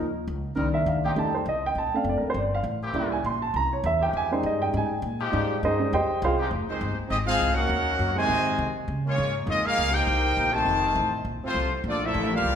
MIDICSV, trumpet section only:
0, 0, Header, 1, 2, 480
1, 0, Start_track
1, 0, Key_signature, -4, "minor"
1, 0, Tempo, 296736
1, 929, Time_signature, 4, 2, 24, 8
1, 20306, End_track
2, 0, Start_track
2, 0, Title_t, "Trumpet section"
2, 0, Program_c, 0, 61
2, 10819, Note_on_c, 0, 72, 83
2, 10829, Note_on_c, 0, 63, 73
2, 10830, Note_on_c, 0, 56, 75
2, 10834, Note_on_c, 0, 67, 80
2, 11263, Note_off_c, 0, 72, 0
2, 11268, Note_off_c, 0, 63, 0
2, 11269, Note_off_c, 0, 56, 0
2, 11271, Note_off_c, 0, 67, 0
2, 11482, Note_on_c, 0, 75, 94
2, 11488, Note_on_c, 0, 68, 86
2, 11493, Note_on_c, 0, 60, 87
2, 11495, Note_on_c, 0, 67, 81
2, 11612, Note_off_c, 0, 75, 0
2, 11617, Note_off_c, 0, 68, 0
2, 11621, Note_off_c, 0, 60, 0
2, 11623, Note_off_c, 0, 67, 0
2, 11748, Note_on_c, 0, 72, 94
2, 11748, Note_on_c, 0, 77, 102
2, 11755, Note_on_c, 0, 68, 93
2, 11757, Note_on_c, 0, 63, 95
2, 12171, Note_off_c, 0, 63, 0
2, 12191, Note_on_c, 0, 63, 90
2, 12198, Note_on_c, 0, 73, 85
2, 12198, Note_on_c, 0, 78, 103
2, 12200, Note_on_c, 0, 70, 90
2, 12206, Note_off_c, 0, 77, 0
2, 12207, Note_off_c, 0, 72, 0
2, 12210, Note_off_c, 0, 68, 0
2, 13182, Note_off_c, 0, 63, 0
2, 13185, Note_off_c, 0, 78, 0
2, 13186, Note_off_c, 0, 73, 0
2, 13187, Note_off_c, 0, 70, 0
2, 13209, Note_on_c, 0, 75, 95
2, 13212, Note_on_c, 0, 80, 105
2, 13213, Note_on_c, 0, 72, 99
2, 13217, Note_on_c, 0, 66, 101
2, 14106, Note_off_c, 0, 75, 0
2, 14108, Note_off_c, 0, 72, 0
2, 14108, Note_off_c, 0, 80, 0
2, 14110, Note_off_c, 0, 66, 0
2, 14689, Note_on_c, 0, 65, 81
2, 14700, Note_on_c, 0, 73, 97
2, 14704, Note_on_c, 0, 58, 80
2, 14705, Note_on_c, 0, 68, 81
2, 15118, Note_off_c, 0, 65, 0
2, 15124, Note_off_c, 0, 73, 0
2, 15126, Note_off_c, 0, 58, 0
2, 15127, Note_off_c, 0, 68, 0
2, 15329, Note_on_c, 0, 65, 88
2, 15330, Note_on_c, 0, 68, 91
2, 15333, Note_on_c, 0, 58, 90
2, 15348, Note_on_c, 0, 75, 105
2, 15586, Note_off_c, 0, 68, 0
2, 15594, Note_off_c, 0, 65, 0
2, 15596, Note_off_c, 0, 58, 0
2, 15602, Note_on_c, 0, 70, 91
2, 15604, Note_off_c, 0, 75, 0
2, 15605, Note_on_c, 0, 68, 96
2, 15606, Note_on_c, 0, 63, 95
2, 15609, Note_on_c, 0, 77, 117
2, 16036, Note_off_c, 0, 70, 0
2, 16044, Note_off_c, 0, 63, 0
2, 16053, Note_on_c, 0, 72, 94
2, 16056, Note_on_c, 0, 70, 90
2, 16060, Note_on_c, 0, 79, 106
2, 16063, Note_on_c, 0, 63, 90
2, 16088, Note_off_c, 0, 68, 0
2, 16090, Note_off_c, 0, 77, 0
2, 17022, Note_off_c, 0, 72, 0
2, 17024, Note_on_c, 0, 75, 90
2, 17031, Note_on_c, 0, 81, 106
2, 17033, Note_off_c, 0, 70, 0
2, 17035, Note_on_c, 0, 65, 88
2, 17036, Note_off_c, 0, 79, 0
2, 17037, Note_off_c, 0, 63, 0
2, 17041, Note_on_c, 0, 72, 89
2, 17997, Note_off_c, 0, 75, 0
2, 18001, Note_off_c, 0, 81, 0
2, 18003, Note_off_c, 0, 65, 0
2, 18006, Note_off_c, 0, 72, 0
2, 18543, Note_on_c, 0, 65, 80
2, 18543, Note_on_c, 0, 69, 81
2, 18548, Note_on_c, 0, 72, 90
2, 18550, Note_on_c, 0, 58, 72
2, 18965, Note_off_c, 0, 65, 0
2, 18965, Note_off_c, 0, 69, 0
2, 18968, Note_off_c, 0, 58, 0
2, 18968, Note_off_c, 0, 72, 0
2, 19213, Note_on_c, 0, 69, 84
2, 19214, Note_on_c, 0, 74, 97
2, 19215, Note_on_c, 0, 58, 85
2, 19216, Note_on_c, 0, 65, 85
2, 19457, Note_off_c, 0, 69, 0
2, 19457, Note_off_c, 0, 74, 0
2, 19458, Note_off_c, 0, 58, 0
2, 19459, Note_off_c, 0, 65, 0
2, 19493, Note_on_c, 0, 62, 93
2, 19495, Note_on_c, 0, 76, 103
2, 19499, Note_on_c, 0, 70, 88
2, 19503, Note_on_c, 0, 69, 92
2, 19950, Note_off_c, 0, 70, 0
2, 19952, Note_off_c, 0, 62, 0
2, 19952, Note_off_c, 0, 76, 0
2, 19956, Note_off_c, 0, 69, 0
2, 19969, Note_on_c, 0, 70, 82
2, 19969, Note_on_c, 0, 77, 103
2, 19972, Note_on_c, 0, 67, 88
2, 19984, Note_on_c, 0, 60, 89
2, 20306, Note_off_c, 0, 60, 0
2, 20306, Note_off_c, 0, 67, 0
2, 20306, Note_off_c, 0, 70, 0
2, 20306, Note_off_c, 0, 77, 0
2, 20306, End_track
0, 0, End_of_file